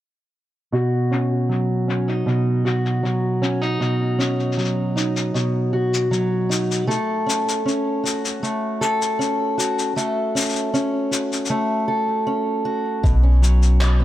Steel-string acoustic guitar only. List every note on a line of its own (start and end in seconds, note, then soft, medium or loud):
0.72 2.25 B2 medium
0.72 2.64 F#4 medium
1.11 1.88 C#4 soft
1.49 3.03 F#3 medium
1.88 2.08 C#4 medium
2.08 3.41 D#4 soft
2.26 3.79 B2 medium
2.65 3.80 F#4 medium
3.03 4.57 F#3 medium
3.42 3.61 C#4 medium
3.61 4.94 D#4 soft
3.80 5.33 B2 medium
3.80 5.73 F#4 medium
4.19 7.26 C#4 soft
4.57 6.11 F#3 medium
4.96 6.48 D#4 medium
5.34 6.96 B2 medium
5.73 6.88 F#4 medium
6.11 6.87 F#3 medium
6.49 6.96 D#4 medium
6.87 8.42 A3 medium
6.87 8.80 A4 medium
7.26 7.65 C#4 medium
7.66 9.19 C#4 medium
8.04 9.57 F#4 medium
8.43 9.95 A3 medium
8.81 9.95 A4 medium
9.19 10.35 C#4 medium
9.58 11.11 F#4 medium
9.96 11.49 A3 medium
9.96 11.87 A4 medium
10.35 10.73 C#4 soft
10.74 12.26 C#4 medium
11.11 12.65 F#4 medium
11.50 13.12 A3 medium
11.88 13.11 A4 medium
12.27 13.23 C#4 medium
12.65 13.23 F#4 medium
13.03 13.80 B2 medium
13.23 14.04 C#4 medium
13.42 14.04 F#3 medium
13.81 14.04 B2 medium
14.00 14.04 B3 medium